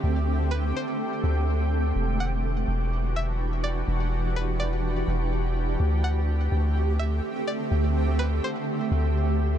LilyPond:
<<
  \new Staff \with { instrumentName = "Synth pluck" } { \time 4/4 \key e \minor \tempo 4 = 125 r4 b'8 c''2~ c''8 | r8 fis''2 e''4 d''8 | r4 b'8 d''2~ d''8 | r8 fis''2 e''4 d''8 |
r4 b'8 c''2~ c''8 | }
  \new Staff \with { instrumentName = "Ambient pad" } { \time 4/4 \key e \minor << { g'1 | g'1~ | g'1~ | g'1~ |
g'1 | } \\ { <d a c'>1 | <e d' fis'>1~ | <e d' fis'>1 | <d a c'>1~ |
<d a c'>1 | } >> }
  \new Staff \with { instrumentName = "808-style bass" } { \clef bass \time 4/4 \key e \minor d,4. r4 d,4. | e,,4. e,,2~ e,,8 | e,,2~ e,,8 e,,4. | d,4. d,4. r4 |
d,4. r4 d,4. | }
>>